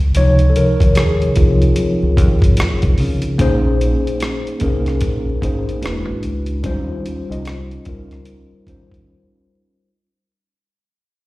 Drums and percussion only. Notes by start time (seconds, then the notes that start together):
0.15 closed hi-hat
0.39 closed hi-hat, muted conga
0.56 closed hi-hat
0.80 kick, closed hi-hat
0.95 cross-stick, closed hi-hat, muted conga
1.21 closed hi-hat, muted conga, low conga
1.36 kick, closed hi-hat, high conga
1.62 closed hi-hat
1.76 closed hi-hat, muted conga, high conga
2.02 muted conga
2.17 kick, closed hi-hat, high conga
2.42 kick, closed hi-hat
2.57 cross-stick, closed hi-hat, muted conga, high conga
2.82 kick, closed hi-hat
2.98 open hi-hat, high conga, low conga
3.22 closed hi-hat
3.39 kick, closed hi-hat
3.81 closed hi-hat
4.07 closed hi-hat
4.20 cross-stick, closed hi-hat
4.47 closed hi-hat
4.60 kick, closed hi-hat
4.86 cross-stick, closed hi-hat
5.01 kick, closed hi-hat
5.42 kick, closed hi-hat
5.69 closed hi-hat
5.83 cross-stick, closed hi-hat
6.23 closed hi-hat
6.46 closed hi-hat
6.64 kick, closed hi-hat
7.06 closed hi-hat
7.32 closed hi-hat
7.45 cross-stick, closed hi-hat
7.71 closed hi-hat
7.85 kick, closed hi-hat
8.11 cross-stick, closed hi-hat
8.25 closed hi-hat
8.67 kick, closed hi-hat
8.92 kick, closed hi-hat